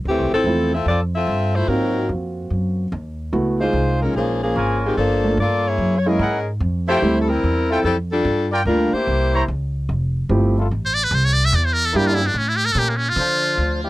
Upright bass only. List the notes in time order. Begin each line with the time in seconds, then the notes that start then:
0.05 D2
0.18 C2
0.31 A1
0.44 E2
0.86 F2
1.27 G2
1.68 G#2
2.09 F2
2.50 F#2
2.92 D#2
3.33 C#2
3.73 C2
4.14 A#1
4.56 G#1
4.97 G1
5.37 G2
5.78 F#2
6.19 G#2
6.60 F2
7.02 D2
7.43 E2
7.84 F2
8.25 G2
8.65 D2
8.93 muted upright bass stroke
9.07 C2
9.48 C#2
9.89 F1
10.29 G1
10.71 A1
11.11 C2
11.53 E2
11.95 G2
12.34 A2
12.75 A#2
13.16 D3
13.58 D2